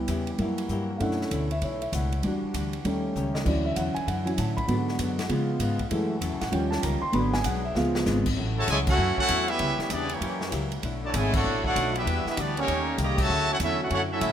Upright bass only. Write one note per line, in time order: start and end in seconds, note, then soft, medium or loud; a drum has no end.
0.08 0.38 E2 loud
0.39 0.68 F#2 medium
0.69 0.99 G2 medium
1.00 1.30 F#2 medium
1.31 1.61 D2 medium
1.62 1.91 B1 medium
1.92 2.22 C#2 medium
2.23 2.41 E2 medium
2.42 muted upright bass stroke soft
2.54 2.83 D2 medium
2.84 3.14 D#2 medium
3.16 3.45 C#2 medium
3.46 3.75 D2 medium
3.77 3.95 E2 medium
3.96 muted upright bass stroke soft
4.07 4.37 F#2 medium
4.38 4.68 A2 medium
4.68 4.98 G#2 medium
4.99 5.29 F#2 medium
5.29 5.59 C#3 medium
5.59 5.90 G#2 medium
5.91 6.21 F#2 medium
6.21 6.32 E2 medium
6.32 6.41 C#2 medium
6.41 6.51 A1 medium
6.52 6.82 D#2 medium
6.83 7.01 C#2 medium
7.02 muted upright bass stroke soft
7.13 7.43 G#1 medium
7.44 7.74 B1 medium
7.75 8.05 C#2 medium
8.06 8.36 G#1 loud
8.37 8.67 A1 medium
8.68 8.97 C#2 medium
8.98 9.16 F#2 medium
9.18 muted upright bass stroke soft
9.29 9.59 E2 medium
9.60 9.78 C#2 medium
9.79 muted upright bass stroke soft
9.90 10.20 E2 loud
10.21 10.51 F#2 medium
10.52 10.82 C#2 medium
10.83 11.13 B1 medium
11.14 11.43 G#1 loud
11.44 11.74 A1 medium
11.76 12.05 B1 loud
12.06 12.24 E2 medium
12.25 muted upright bass stroke soft
12.37 12.66 D2 medium
12.68 12.97 D#2 medium
12.98 13.28 C2 loud
13.29 13.58 D2 medium
13.60 13.89 E2 loud
13.91 14.20 F#2 medium
14.21 14.32 A2 loud